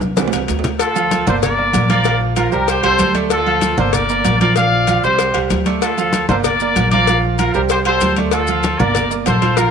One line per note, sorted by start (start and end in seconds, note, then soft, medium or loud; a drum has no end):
0.01 0.31 C2 medium
0.01 high conga medium
0.01 maracas soft
0.17 0.38 E3 medium
0.17 0.38 G3 medium
0.17 0.39 C4 medium
0.17 cowbell loud
0.17 high conga loud
0.17 high timbale medium
0.17 low agogo medium
0.17 maracas medium
0.28 low timbale loud
0.33 0.48 C2 medium
0.33 cowbell medium
0.33 low agogo loud
0.33 maracas medium
0.38 low timbale medium
0.48 1.22 D2 medium
0.48 cowbell medium
0.48 low timbale medium
0.48 maracas medium
0.59 low timbale loud
0.64 cowbell medium
0.64 low conga loud
0.64 maracas soft
0.69 low timbale medium
0.79 1.24 F4 medium
0.79 1.24 A4 medium
0.79 cowbell loud
0.79 high conga soft
0.79 low agogo loud
0.79 maracas medium
0.96 1.21 F3 medium
0.96 1.22 F4 medium
0.96 1.22 F5 medium
0.96 high conga soft
0.96 low agogo medium
0.96 maracas medium
1.11 cowbell medium
1.11 high conga loud
1.11 low timbale medium
1.11 maracas medium
1.27 1.71 G1 medium
1.27 1.53 A#3 medium
1.27 1.35 A4 medium
1.27 1.53 A#4 medium
1.27 1.35 C5 medium
1.27 1.53 D5 medium
1.27 high conga loud
1.27 low conga medium
1.27 low agogo loud
1.27 maracas soft
1.42 1.87 A#4 medium
1.42 1.87 D5 medium
1.42 cowbell loud
1.42 high conga soft
1.42 low conga medium
1.42 low agogo medium
1.42 maracas medium
1.58 1.84 A#3 medium
1.58 1.84 A#4 medium
1.58 1.84 D5 medium
1.58 high conga soft
1.73 2.47 A#1 loud
1.73 cowbell medium
1.73 high conga loud
1.73 low timbale medium
1.73 low agogo loud
1.73 maracas medium
1.89 2.03 F3 medium
1.89 2.03 F4 medium
1.89 2.19 A#4 medium
1.89 2.19 D5 loud
1.89 2.03 F5 loud
1.89 cowbell medium
1.89 high conga medium
1.89 maracas soft
2.04 2.31 F3 medium
2.04 2.31 F4 medium
2.04 2.31 F5 medium
2.04 cowbell loud
2.04 high conga soft
2.04 low agogo medium
2.04 maracas medium
2.21 high conga soft
2.36 2.50 F3 medium
2.36 2.50 F4 medium
2.36 2.52 F4 medium
2.36 2.51 A#4 medium
2.36 2.50 F5 medium
2.36 cowbell medium
2.36 high conga medium
2.36 low timbale medium
2.36 low agogo loud
2.36 maracas medium
2.52 2.82 C2 medium
2.52 2.78 G3 medium
2.52 2.78 G4 medium
2.52 2.67 G4 medium
2.52 2.67 A#4 medium
2.52 2.78 C5 medium
2.52 high conga soft
2.52 maracas soft
2.68 2.84 G4 medium
2.68 2.83 C5 medium
2.68 cowbell loud
2.68 high conga soft
2.68 low agogo medium
2.68 maracas medium
2.83 2.99 C2 medium
2.83 3.09 G3 medium
2.83 3.09 G4 medium
2.83 3.14 A4 medium
2.83 3.09 C5 medium
2.83 3.13 C5 loud
2.83 cowbell medium
2.83 high conga soft
2.83 low agogo loud
2.99 3.72 D2 medium
2.99 cowbell medium
2.99 high conga medium
2.99 low timbale medium
2.99 maracas medium
3.14 3.40 A3 medium
3.14 3.41 A4 medium
3.14 3.41 D5 medium
3.14 cowbell medium
3.14 high conga medium
3.14 maracas soft
3.30 3.75 F4 medium
3.30 3.75 A4 loud
3.30 cowbell loud
3.30 high conga soft
3.30 low agogo loud
3.30 maracas medium
3.46 3.73 F3 medium
3.46 3.73 F4 medium
3.46 3.73 F5 medium
3.46 high conga soft
3.46 low agogo medium
3.61 cowbell medium
3.61 high conga loud
3.61 low timbale medium
3.61 maracas medium
3.78 4.22 G1 loud
3.78 4.04 A#3 medium
3.78 3.93 A4 medium
3.78 4.04 A#4 medium
3.78 3.93 C5 medium
3.78 4.04 D5 medium
3.78 high conga loud
3.78 low conga medium
3.78 low agogo loud
3.78 maracas soft
3.93 4.40 A#4 medium
3.93 4.39 D5 loud
3.93 cowbell loud
3.93 high conga soft
3.93 low conga medium
3.93 low agogo medium
3.93 maracas medium
4.09 4.35 A#3 medium
4.09 4.36 A#4 medium
4.09 4.36 D5 medium
4.09 high conga soft
4.09 maracas medium
4.25 4.98 A#1 loud
4.25 cowbell medium
4.25 high conga medium
4.25 low timbale medium
4.25 low agogo medium
4.25 maracas medium
4.40 4.54 F3 medium
4.40 4.54 F4 medium
4.40 4.55 A#4 medium
4.40 4.55 D5 loud
4.40 4.55 F5 loud
4.40 cowbell medium
4.40 high conga medium
4.40 maracas soft
4.56 4.83 F3 medium
4.56 4.83 F4 medium
4.56 5.00 D5 medium
4.56 5.00 F5 loud
4.56 4.83 F5 medium
4.56 cowbell loud
4.56 low agogo medium
4.56 maracas medium
4.72 high conga soft
4.87 5.01 F3 medium
4.87 5.01 F4 medium
4.87 5.01 F5 medium
4.87 cowbell medium
4.87 high conga medium
4.87 low timbale medium
4.87 low agogo loud
4.87 maracas medium
5.04 5.33 C2 medium
5.04 5.30 G3 medium
5.04 5.37 G4 medium
5.04 5.30 G4 medium
5.04 5.37 C5 loud
5.04 5.30 C5 medium
5.04 high conga soft
5.04 maracas soft
5.19 cowbell loud
5.19 high conga soft
5.19 low agogo medium
5.19 maracas medium
5.34 5.49 C2 medium
5.34 5.61 G3 medium
5.34 5.61 G4 medium
5.34 5.61 C5 medium
5.34 cowbell medium
5.34 high conga soft
5.34 low agogo loud
5.50 6.23 D2 medium
5.50 cowbell medium
5.50 high conga medium
5.50 low timbale medium
5.50 maracas medium
5.66 5.92 A3 medium
5.66 5.92 A4 medium
5.66 5.92 D5 medium
5.66 cowbell medium
5.66 high conga medium
5.66 maracas soft
5.82 6.26 F4 medium
5.82 6.26 A4 medium
5.82 cowbell loud
5.82 high conga soft
5.82 low agogo loud
5.82 maracas medium
5.98 6.24 F3 medium
5.98 6.24 F4 medium
5.98 6.24 F5 medium
5.98 high conga soft
5.98 low agogo medium
5.98 maracas medium
6.13 cowbell medium
6.13 high conga loud
6.13 low timbale medium
6.13 maracas medium
6.28 6.72 G1 medium
6.28 6.56 A#3 medium
6.28 6.36 A4 medium
6.28 6.56 A#4 medium
6.28 6.35 C5 medium
6.28 6.55 D5 medium
6.28 high conga loud
6.28 low conga medium
6.28 low agogo loud
6.28 maracas soft
6.44 6.89 A#4 medium
6.44 6.88 D5 medium
6.44 cowbell loud
6.44 high conga soft
6.44 low conga medium
6.44 low agogo medium
6.44 maracas medium
6.60 6.87 A#3 medium
6.60 6.87 A#4 medium
6.60 6.87 D5 medium
6.60 high conga soft
6.60 maracas medium
6.75 7.49 A#1 medium
6.75 cowbell medium
6.75 high conga medium
6.75 low timbale medium
6.75 low agogo loud
6.75 maracas medium
6.91 7.05 F3 loud
6.91 7.05 F4 loud
6.91 7.21 A#4 medium
6.91 7.20 D5 loud
6.91 7.06 F5 medium
6.91 cowbell medium
6.91 high conga medium
6.91 maracas soft
7.07 7.34 F3 medium
7.07 7.34 F4 medium
7.07 7.34 F5 medium
7.07 cowbell loud
7.07 high conga soft
7.07 low agogo medium
7.07 maracas medium
7.24 high conga soft
7.38 7.52 F3 medium
7.38 7.54 F4 medium
7.38 7.52 F4 medium
7.38 7.53 A#4 medium
7.38 7.52 F5 medium
7.38 cowbell medium
7.38 high conga medium
7.38 low timbale medium
7.38 low agogo loud
7.38 maracas medium
7.54 7.98 C2 medium
7.54 7.80 G3 medium
7.54 7.62 G4 medium
7.54 7.81 G4 medium
7.54 7.61 A#4 medium
7.54 7.81 C5 medium
7.54 high conga soft
7.54 maracas soft
7.69 7.78 G4 medium
7.69 7.77 C5 medium
7.69 cowbell loud
7.69 high conga soft
7.69 low agogo medium
7.69 maracas medium
7.85 8.12 G3 medium
7.85 8.12 G4 medium
7.85 8.16 A4 medium
7.85 8.15 C5 loud
7.85 8.12 C5 medium
7.85 cowbell medium
7.85 high conga soft
7.85 low agogo loud
8.01 8.74 D2 medium
8.01 cowbell medium
8.01 high conga medium
8.01 low timbale medium
8.01 maracas medium
8.16 8.43 A3 medium
8.16 8.43 A4 medium
8.16 8.43 D5 medium
8.16 cowbell medium
8.16 high conga medium
8.16 maracas soft
8.31 8.77 F4 medium
8.31 8.76 A4 loud
8.31 cowbell loud
8.31 low agogo loud
8.31 maracas medium
8.47 8.74 F3 medium
8.47 8.74 F4 medium
8.47 8.75 F5 medium
8.47 high conga soft
8.47 low agogo medium
8.47 maracas medium
8.63 cowbell medium
8.63 high conga medium
8.63 low timbale medium
8.63 maracas medium
8.79 9.24 G1 medium
8.79 9.05 A#3 medium
8.79 9.05 A#4 medium
8.79 9.11 A#4 medium
8.79 9.11 D5 loud
8.79 9.05 D5 medium
8.79 high conga loud
8.79 low conga loud
8.79 low agogo loud
8.79 maracas soft
8.95 cowbell medium
8.95 high conga soft
8.95 low conga medium
8.95 low agogo medium
8.95 maracas medium
9.11 9.37 A#3 medium
9.11 9.36 A#4 medium
9.11 9.37 D5 medium
9.11 high conga soft
9.11 maracas medium
9.26 9.71 A#1 medium
9.26 9.56 A4 medium
9.26 9.56 C5 medium
9.26 cowbell medium
9.26 high conga loud
9.26 low timbale medium
9.26 low agogo loud
9.26 maracas medium
9.42 9.55 F3 medium
9.42 9.55 F4 medium
9.42 9.56 F5 medium
9.42 cowbell medium
9.42 high conga medium
9.42 maracas soft
9.57 9.71 F3 medium
9.57 9.71 F4 medium
9.57 9.71 A#4 loud
9.57 9.71 F5 medium
9.57 cowbell loud
9.57 high conga soft
9.57 low agogo medium
9.57 maracas medium